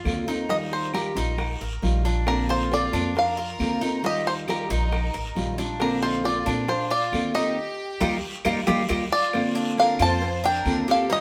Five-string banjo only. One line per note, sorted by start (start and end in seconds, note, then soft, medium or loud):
0.00 0.50 F5 medium
0.50 0.56 D#5 medium
0.73 0.94 C5 medium
0.94 2.01 A#4 medium
2.28 2.48 A#4 medium
2.50 2.73 C5 medium
2.74 3.18 D5 medium
3.19 4.01 F5 medium
4.06 4.26 D#5 medium
4.27 4.33 C5 medium
4.50 5.55 A#4 medium
5.82 6.02 A#4 medium
6.03 6.25 C5 medium
6.25 6.66 D5 medium
6.69 6.92 C5 medium
6.91 7.32 D5 medium
7.35 8.86 D#5 medium
9.12 9.53 D5 loud
9.80 10.01 F5 medium
10.02 10.45 A5 loud
10.45 10.90 G5 loud
10.91 11.12 F5 medium
11.13 11.21 D#5 medium